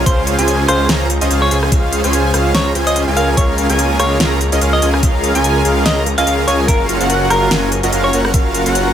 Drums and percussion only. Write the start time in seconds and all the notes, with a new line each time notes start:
0.06 kick, closed hi-hat
0.27 closed hi-hat
0.39 closed hi-hat
0.48 closed hi-hat
0.68 cross-stick, closed hi-hat
0.89 snare, closed hi-hat
1.10 closed hi-hat
1.21 closed hi-hat
1.31 closed hi-hat
1.51 closed hi-hat
1.63 cross-stick
1.72 kick, closed hi-hat
1.93 closed hi-hat
2.04 closed hi-hat
2.13 closed hi-hat
2.34 cross-stick, closed hi-hat
2.55 snare, closed hi-hat
2.75 closed hi-hat
2.87 closed hi-hat
2.96 closed hi-hat
3.17 closed hi-hat
3.37 kick, closed hi-hat
3.58 closed hi-hat
3.70 closed hi-hat
3.79 closed hi-hat
3.99 cross-stick, closed hi-hat
4.20 snare, closed hi-hat
4.41 closed hi-hat
4.52 closed hi-hat
4.61 closed hi-hat
4.82 closed hi-hat
4.94 cross-stick
5.03 kick, closed hi-hat
5.24 closed hi-hat
5.35 closed hi-hat
5.44 closed hi-hat
5.65 closed hi-hat
5.86 snare, closed hi-hat
6.06 closed hi-hat
6.18 closed hi-hat
6.27 closed hi-hat
6.48 closed hi-hat
6.68 kick, closed hi-hat
6.89 closed hi-hat
7.01 closed hi-hat
7.10 closed hi-hat
7.30 cross-stick, closed hi-hat
7.51 snare, closed hi-hat
7.72 closed hi-hat
7.83 closed hi-hat
7.93 closed hi-hat
8.13 closed hi-hat
8.25 cross-stick
8.34 kick, closed hi-hat
8.55 closed hi-hat
8.66 closed hi-hat
8.75 closed hi-hat